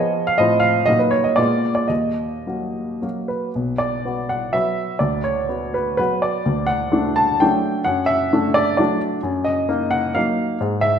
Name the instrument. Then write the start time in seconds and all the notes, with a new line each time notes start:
grand piano
Already playing: F3 B3 G#4 D#5
0.27 F5
0.38 A2 F3 C4 F4 D#5
0.60 F5
0.86 A#2 F#3 A#3 D#4 D#5
0.99 B4
1.11 C#5
1.24 D#5
1.36 A#2 G#3 B3 F4 D5
1.75 D5
1.88 D#2 D#5
2.47 F#3 A#3 F#4
3.02 F#3 A#3 F#4
3.28 B4
3.55 B1
3.78 D5
4.05 B3 F#4
4.29 F#5
4.53 F#3 B3 F#4 E5
4.99 D2 D5
5.24 C#5
5.49 B3 F#4
5.74 B4
5.97 F#3 B3 F#4 B4
6.22 D5
6.46 D2
6.67 F#5
6.92 A3 D4
7.16 A5
7.40 F#3 A3 D4 G5
7.84 F#2 F#5
8.06 E5
8.33 A3 D4
8.54 D5
8.77 F#3 A3 D4 D5
9.23 F#2
9.44 D#5
9.69 A#3 D#4
9.91 F#5
10.14 F#3 A#3 D#4 F5
10.60 G#2
10.81 E5